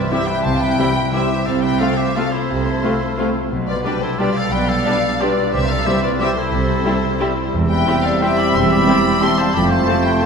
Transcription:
Already playing: C3 G3 E4 F4 B4 C5 D5
0.10 C3 E3 G3 C4 E4 G4 C5 E5
0.28 E4 B4 E5 G5
0.44 C2 C3 C5 F5 A5
0.61 G3 B4 E5 G5
0.78 C3 E3 G3 C4 E4 G4 E5
0.97 C5
1.14 C3 E3 G3 C4 E4 G4 C5 E5
1.32 E4
1.46 C2 C3 A4 C5 F5
1.63 A3 B4 E5 G5
1.80 C3 A3 C4 F4 A4 C5 F5
1.98 G4 C5 E5
2.16 C3 A3 C4 F4 A4 C5 F5
2.33 E4 F4 A4 C5
2.50 C2 C3
2.66 A3
2.82 C3 A3 C4 F4 F5
3.01 C5
3.18 C3 A3 C4 F4 A4 F5
3.35 F4
3.51 B1 B2
3.68 G3 F4 B4 D5
3.85 B2 G3 D4 G4 B4 D5
4.02 E4 A4 C5 D5
4.19 B2 G3 D4 F4 G4 B4 D5
4.37 D4 A4 D5 F5
4.52 B1 B2 B4 D5 G5
4.68 G3 A4 D5 F5
4.85 B2 G3 D4 G4 D5
5.03 D5
5.20 B2 G3 D4 F4 G4 B4 D5
5.37 D4
5.53 C2 C3 G4 C5 E5
5.68 G3 A4 D5 F5
5.85 C3 G3 C4 E4 G4 C5 E5
6.03 F4 B4 C5 D5
6.20 C3 G3 C4 E4 G4 C5 E5
6.37 E4 A4 C5
6.53 C2 C3
6.69 G3
6.85 C3 G3 C4 E4 G4 E5
7.04 C5
7.19 C3 G3 C4 E4 G4 E5
7.37 E4
7.53 E1 E2 C3 G3 C4 G4 E5
7.70 G3 B4 E5 G5
7.86 G3 C4 E4 G4
8.04 A4 C5 D5 F5
8.22 G3 C4 E4 G4 C5 E5 G5
8.38 E4 D5 G5 B5
8.55 E1 E2 E5 G5 C6
8.70 G3 D5 G5 B5
8.87 G3 C4 E4 G4
9.05 C5
9.22 G3 C4 E4 G4 E5 A5 C6
9.39 E4 C5 F5 A5
9.54 F1 F2 C3 A3 C4 F4 C5 D5 G5 B5
9.70 A3 C5 F5 A5
9.87 F3 C4 A4
10.05 B4 C5 E5 G5
10.22 C4 A4 F5 A5

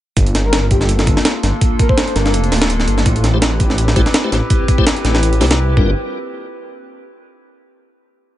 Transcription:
0.17 G1, kick, closed hi-hat
0.27 closed hi-hat
0.35 snare, closed hi-hat
0.45 A#3 D4 F4 A4 A#4
0.53 snare, closed hi-hat
0.71 G1 G4, kick, closed hi-hat
0.81 G4, snare
0.89 closed hi-hat
0.99 snare
1.07 G1, kick, closed hi-hat
1.17 snare
1.25 snare, closed hi-hat
1.43 G1, snare, closed hi-hat
1.61 kick, closed hi-hat
1.79 A#4, kick, closed hi-hat
1.89 A#3 D4 F4 A4 C5, kick
1.98 snare, closed hi-hat
2.08 closed hi-hat
2.15 G1 A#4, snare, closed hi-hat
2.25 A#4, snare
2.33 F1, closed hi-hat
2.44 closed hi-hat
2.52 D1, snare, open hi-hat
2.62 snare
2.70 closed hi-hat
2.80 snare
2.88 G1, closed hi-hat
2.98 snare
3.06 A1, kick, closed hi-hat
3.16 closed hi-hat
3.24 snare, closed hi-hat
3.34 A3 C4 E4 G4 B4 C5
3.42 snare, closed hi-hat
3.60 A1, kick, closed hi-hat
3.70 snare
3.78 closed hi-hat
3.88 snare
3.96 A1 A3 E4 G4 C5, kick, closed hi-hat
4.06 snare
4.14 snare, closed hi-hat
4.24 A3 E4 G4 C5
4.32 A1 A3 E4 G4 C5, snare, closed hi-hat
4.50 kick, closed hi-hat
4.68 kick, closed hi-hat
4.78 A3 E4 G4 C5, kick
4.87 snare, closed hi-hat
4.96 closed hi-hat
5.04 A1, snare, closed hi-hat
5.15 snare
5.23 closed hi-hat
5.33 closed hi-hat
5.41 C2 A3 E4 G4 C5, snare, open hi-hat
5.50 A3 E4 G4 C5, snare
5.77 G1 G3 D4 F4 A#4, kick

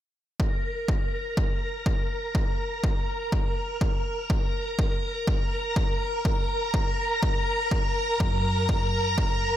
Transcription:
0.40 A#4 A#5, kick
0.88 kick
1.37 kick
1.86 kick
2.35 kick
2.84 kick
3.32 kick
3.81 kick
4.30 kick
4.79 kick
5.27 kick
5.76 kick
6.25 kick
6.74 kick
7.23 kick
7.71 kick
8.20 F#2, kick
8.69 kick
9.18 kick

